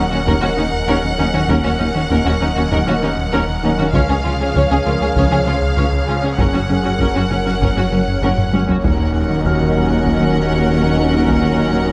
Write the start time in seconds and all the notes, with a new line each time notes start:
Already playing: D#1 F#3 C#4 A#4 D#5 F#5
0.00 F#5
0.11 D#2 C#4 F#4
0.26 D#2 C#4 A#4, taiko
0.41 D#2 D#3 C#4 F#4
0.57 D#2 D#3 C#4 D#4
0.73 D#2
0.87 D#2 C#4 A#4
1.03 D#2
1.18 D#2 D#3 C#4 D#4
1.33 D#2 D#3 C#4 F#4
1.48 D#2 C#4 A#4, taiko
1.64 D#2 C#4 F#4
1.79 D#2 C#4 D#4
1.95 D#2 D#3 C#4 F#4
2.10 D#2 C#4 A#4, taiko
2.25 D#2 C#4 F#4
2.41 D#2 C#4 D#4
2.55 D#2 C#4 F#4
2.71 D#2 C#4 A#4 D#5, taiko
2.87 D#2 D#3 C#4 F#4
3.02 D#2 D#3 C#4 D#4
3.17 D#2
3.32 D#2 C#4 A#4
3.48 D#2
3.63 D#2 D#3 C#4 D#4
3.78 D#2 D#3 C#4 F#4
3.93 C#2 F3 C#4 G#4 C#5 F5, taiko
4.09 C#2 C#4 G#4
4.24 C#2 C#4 F4
4.40 C#2 C#3 C#4 G#4
4.55 C#2 C#4 C#5, taiko
4.71 C#2 C#4 G#4
4.85 C#2 C#4 F4 A#4
5.01 C#2 C#4 G#4
5.16 C#2 C#4 C#5, taiko
5.31 C#2 C#3 C#4 G#4
5.46 C#2 C#3 C#4 F4
5.62 C#2
5.77 C#2 C#4 C#5
5.92 C#2
6.08 C#2 C#3 C#4 F4
6.23 C#2 C#3 C#4 G#4
6.38 F#1 F#2 F#3 C#4 A#4 F#5, taiko
6.54 F#2 C#4 F#4
6.69 F#1 F#2 C#4 G#4
6.83 F#2 F#3 C#4 F#4
6.99 F#1 F#2 C#4 A#4, taiko
7.15 F#2 C#4 F#4
7.30 F#1 F#2 C#4
7.46 F#2 C#4 F#4
7.61 F#1 F#2 C#4 A#4, taiko
7.77 F#2 F#3 C#4 F#4
7.92 F#1 F#2 F#3 C#4
8.08 F#2
8.22 F#1 F#2 C#4 A#4 F#5, taiko low-mid
8.38 F#2, taiko low-mid
8.53 F#1 F#2 F#3 C#4, taiko high
8.69 F#2 F#3 C#4 F#4, taiko low
8.83 D#1 D#2 F#3 C#4 F#4 A#4 D#5 F#5, taiko
8.99 D#2
9.15 D#2
9.30 D#3
9.45 D#2 F#4 F6, taiko
9.62 D#2
9.77 D#2
9.92 D#2
10.06 D#2, taiko
10.23 D#3
10.38 D#3
10.53 D#2
10.68 D#2
10.84 D#2
10.99 D#3
11.14 D#3
11.29 D#2, taiko
11.45 D#2
11.60 D#2
11.76 D#3